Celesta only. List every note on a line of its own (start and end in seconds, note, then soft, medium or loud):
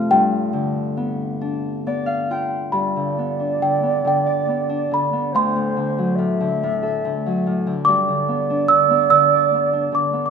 0.00 0.16 A5 medium
0.11 1.80 G5 medium
2.72 3.64 B5 medium
3.62 4.06 G5 medium
4.08 4.95 G5 medium
4.94 5.36 B5 medium
5.36 6.58 C6 medium
7.85 8.70 D6 medium
8.68 9.09 E6 medium
9.10 9.94 E6 medium
9.95 10.25 D6 medium
10.26 10.30 D6 soft